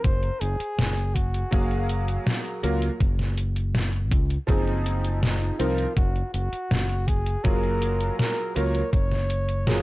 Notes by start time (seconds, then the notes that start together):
0.04 F#1 C5, kick, closed hi-hat
0.23 closed hi-hat
0.40 F#1 G#4, closed hi-hat
0.60 closed hi-hat
0.79 F#1, snare, closed hi-hat
0.97 closed hi-hat
1.15 F#4, kick, closed hi-hat
1.34 closed hi-hat
1.51 F#1 F#3 A#3 G#4 F5, kick, closed hi-hat
1.71 closed hi-hat
1.89 closed hi-hat
2.08 closed hi-hat
2.27 snare, closed hi-hat
2.45 closed hi-hat
2.63 C#2 F#3 A#3 F4 A#4, closed hi-hat
2.82 closed hi-hat
3.00 F#1, kick, closed hi-hat
3.19 snare, closed hi-hat
3.38 closed hi-hat
3.56 closed hi-hat
3.75 snare, closed hi-hat
3.93 closed hi-hat
4.12 C#2, kick, closed hi-hat
4.30 closed hi-hat
4.47 F#1 F3 C4 D#4 G#4, kick, closed hi-hat
4.68 closed hi-hat
4.86 closed hi-hat
5.05 closed hi-hat
5.22 D#4, snare, closed hi-hat
5.42 closed hi-hat
5.59 C2 F3 C4 D#4 F4 A#4, closed hi-hat
5.78 closed hi-hat
5.96 F#1 F#4, kick, closed hi-hat
6.16 closed hi-hat
6.33 F#1 F#4, closed hi-hat
6.52 muted fingered electric bass stroke, closed hi-hat
6.71 F#1, snare, closed hi-hat
6.89 closed hi-hat
7.07 G#4, kick, closed hi-hat
7.26 closed hi-hat
7.44 F#1 F#3 A#3 F4 G#4 A#4, kick, closed hi-hat
7.63 closed hi-hat
7.82 closed hi-hat
8.01 closed hi-hat
8.18 A#4, snare, closed hi-hat
8.38 closed hi-hat
8.55 C#2 F#3 A#3 F4 A#4 C#5, closed hi-hat
8.75 closed hi-hat
8.92 F#1 C#5, kick, closed hi-hat
9.11 snare, closed hi-hat
9.30 closed hi-hat
9.49 closed hi-hat
9.67 F#3 A#3 F4 G#4, snare, closed hi-hat